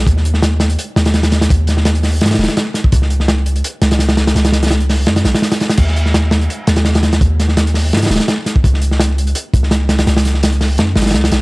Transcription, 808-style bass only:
0.07 0.77 D#2 loud
0.96 1.49 D#2 medium
1.50 2.23 D#2 loud
2.21 2.37 G#2 medium
2.39 2.48 D#1 loud
2.93 3.63 C#2 loud
3.82 4.34 C#2 medium
4.35 5.08 C#2 loud
5.07 5.23 F#2 medium
5.24 5.33 B1 medium
5.78 6.48 D#2 loud
6.68 7.20 D#2 medium
7.21 7.94 D#2 loud
7.92 8.09 G#2 medium
8.10 8.19 D#1 loud
8.64 9.34 C#2 loud
9.54 10.06 C#2 medium
10.07 10.80 C#2 loud
10.78 10.95 F#2 medium
10.96 11.15 G#1 loud
11.14 11.30 C#2 loud
11.32 11.42 B1 medium

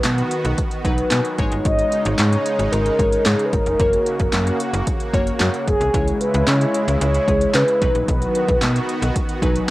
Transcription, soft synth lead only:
1.65 2.15 D#5 loud
2.19 2.73 C#5 loud
2.72 3.27 A#4 medium
3.25 3.45 G#4 medium
3.46 3.54 B4 medium
3.53 4.60 A#4 medium
5.68 6.17 G#4 loud
6.21 6.46 B4 loud
6.48 6.97 C#5 loud
7.01 7.56 C#5 loud
7.55 8.07 B4 loud
8.08 8.58 B4 medium

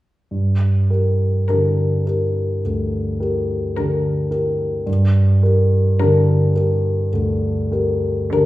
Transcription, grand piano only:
0.31 0.89 G2 soft
0.90 1.44 G4 soft
0.90 1.44 A#4 soft
1.49 2.03 D4 soft
1.49 2.03 G4 soft
1.49 2.03 A#4 soft
2.06 2.60 G4 soft
2.06 2.60 A#4 soft
2.65 3.19 D2 soft
3.20 3.72 G4 soft
3.20 3.73 A#4 soft
3.77 4.28 D4 soft
3.77 4.28 G4 soft
3.77 4.29 A#4 soft
4.31 4.83 G4 soft
4.31 4.83 A#4 soft
4.86 5.41 G2 soft
5.43 5.96 G4 soft
5.43 5.96 A#4 soft
5.99 6.53 D4 soft
5.99 6.53 G4 soft
5.99 6.53 A#4 soft
6.56 7.09 G4 soft
6.56 7.09 A#4 soft
7.13 7.69 D2 soft
7.72 8.28 G4 soft
7.72 8.28 A#4 soft
8.32 8.46 D4 soft
8.32 8.46 G4 soft
8.32 8.46 A#4 soft

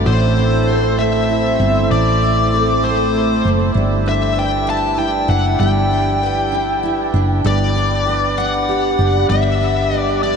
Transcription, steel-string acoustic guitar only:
0.00 0.98 A3 medium
0.00 0.12 D4 medium
0.00 0.12 F#4 medium
0.00 0.68 A4 medium
0.06 1.90 A2 medium
0.37 1.59 C4 medium
0.68 2.52 A4 medium
0.98 2.82 A3 medium
1.29 3.13 E4 medium
1.60 2.21 C4 medium
1.91 3.76 A2 medium
2.22 3.44 C4 medium
2.54 3.82 A4 medium
2.83 3.74 A3 medium
3.14 4.09 E4 medium
3.45 3.82 C4 medium
3.74 5.60 G3 medium
4.06 4.66 D4 medium
4.36 6.23 B4 medium
4.67 5.28 D4 medium
4.97 6.82 E4 medium
5.28 5.91 D4 medium
5.60 7.44 G3 medium
5.91 6.52 D4 medium
6.23 8.06 B4 medium
6.52 7.13 D4 medium
6.83 7.51 E4 medium
7.14 7.75 D4 medium
7.45 9.28 G3 medium
7.76 8.37 D4 medium
8.07 9.90 B4 medium
8.38 8.98 D4 medium
8.69 10.36 G4 medium
8.99 9.60 D4 medium
9.30 10.36 G3 medium
9.61 10.23 D4 medium
9.91 10.36 B4 medium
10.23 10.36 D4 medium

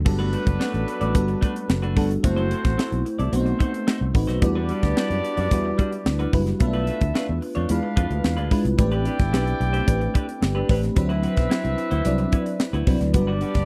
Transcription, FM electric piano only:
0.05 1.00 G3 medium
0.05 1.00 B3 medium
0.05 1.00 D4 medium
0.05 1.00 F#4 medium
0.05 1.00 A4 loud
1.14 1.85 G3 medium
1.14 1.86 B3 medium
1.14 1.86 D4 medium
1.14 1.86 F#4 medium
1.14 1.86 A4 loud
1.96 2.20 G3 medium
1.96 2.20 B3 medium
1.96 2.20 D4 medium
1.96 2.20 F#4 medium
1.96 2.20 A4 loud
2.23 3.18 A3 loud
2.23 3.18 C4 medium
2.23 3.18 E4 medium
2.23 3.18 F#4 medium
2.23 3.18 C5 loud
3.32 4.03 A3 medium
3.32 4.04 B3 loud
3.32 4.04 C4 medium
3.32 3.39 D4 medium
3.32 4.04 F#4 medium
3.39 4.07 D#4 medium
4.14 4.38 A3 medium
4.14 4.38 C4 medium
4.14 4.38 D#4 medium
4.14 4.39 F#4 medium
4.14 4.39 B4 loud
4.42 5.36 G3 medium
4.42 5.36 D4 medium
4.42 5.37 E4 medium
4.42 5.37 F#4 medium
4.42 5.37 B4 loud
5.51 6.22 G3 medium
5.51 6.22 D4 medium
5.51 6.22 E4 medium
5.51 6.22 F#4 medium
5.51 6.22 B4 loud
6.33 6.57 G3 loud
6.33 6.57 D4 medium
6.33 6.57 E4 medium
6.33 6.57 F#4 medium
6.33 6.57 B4 loud
6.60 7.54 A3 loud
6.60 7.55 B3 medium
6.60 6.67 C#4 medium
6.60 7.55 F4 medium
6.60 7.55 B4 loud
6.67 7.58 D4 medium
7.69 8.40 G#3 medium
7.69 8.40 D4 medium
7.69 8.40 E4 medium
7.69 8.40 F4 medium
7.69 8.40 B4 medium
8.51 8.75 G#3 medium
8.51 8.75 D4 medium
8.51 8.75 E4 medium
8.51 8.75 F4 medium
8.51 8.75 B4 loud
8.78 9.72 A3 medium
8.78 9.73 C4 medium
8.78 9.73 D4 medium
8.78 9.73 G4 medium
8.78 9.73 B4 loud
9.87 10.58 A3 medium
9.87 10.58 C4 medium
9.87 10.58 D4 medium
9.87 10.58 G4 medium
9.87 10.58 B4 medium
10.69 10.93 A3 medium
10.69 10.93 C4 medium
10.69 10.93 D4 medium
10.69 10.93 G4 medium
10.69 10.93 B4 loud
10.96 11.90 F#3 loud
10.96 11.91 C4 medium
10.96 11.91 D4 medium
10.96 11.91 E4 medium
10.96 11.91 B4 loud
12.05 12.76 F#3 medium
12.05 12.76 C4 medium
12.05 12.76 D4 medium
12.05 12.76 E4 medium
12.05 12.76 D5 medium
12.87 13.10 F#3 loud
12.87 13.10 C4 medium
12.87 13.11 D4 medium
12.87 13.11 E4 medium
12.87 13.11 B4 medium
13.13 13.65 G3 loud
13.13 13.65 B3 medium
13.13 13.65 D4 medium
13.13 13.65 F#4 medium
13.13 13.65 B4 loud

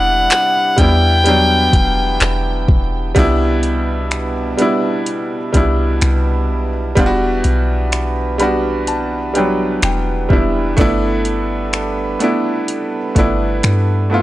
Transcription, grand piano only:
0.00 0.49 G3 loud
0.00 0.50 B3 medium
0.00 0.51 D4 medium
0.00 0.51 E4 loud
0.76 1.23 G3 medium
0.76 1.24 B3 medium
0.76 1.25 D4 medium
0.81 1.27 E4 medium
1.24 2.78 G3 medium
1.24 2.79 B3 medium
1.24 2.79 D4 medium
1.28 2.80 F#3 medium
3.15 4.30 G3 loud
3.15 4.31 B3 loud
3.15 4.31 D4 loud
3.19 4.32 E4 loud
4.57 5.35 G3 medium
4.57 5.35 B3 medium
4.57 5.36 D4 medium
4.62 5.37 E4 loud
5.53 6.68 G3 medium
5.53 6.69 B3 medium
5.53 6.69 D4 medium
5.57 6.70 E4 medium
6.95 8.11 G3 loud
6.95 8.12 B3 loud
6.95 8.12 D4 loud
7.00 7.05 F4 loud
7.06 8.16 F#4 loud
8.38 9.15 G3 medium
8.38 9.16 B3 medium
8.38 9.17 D4 medium
8.38 8.84 B5 medium
8.43 9.18 F#4 loud
8.88 9.32 A5 medium
9.34 10.11 G3 medium
9.34 10.11 B3 medium
9.34 10.12 D4 medium
9.34 9.80 G5 medium
9.38 10.13 F#3 medium
9.84 10.27 G5 medium
10.29 10.68 G3 medium
10.29 10.68 B3 medium
10.29 10.69 D4 medium
10.29 10.75 E5 medium
10.33 10.70 E4 medium
10.77 11.92 A3 loud
10.77 11.93 B3 loud
10.77 11.93 D4 loud
10.81 11.94 E4 loud
12.19 12.96 A3 medium
12.19 12.97 B3 medium
12.19 12.98 D4 medium
12.24 12.99 E4 medium
13.15 14.08 A3 medium
13.15 14.10 B3 medium
13.15 14.12 D4 medium
13.19 14.11 E4 loud
14.10 14.22 A3 medium
14.10 14.22 B3 medium
14.10 14.22 E4 medium
14.14 14.22 F4 loud

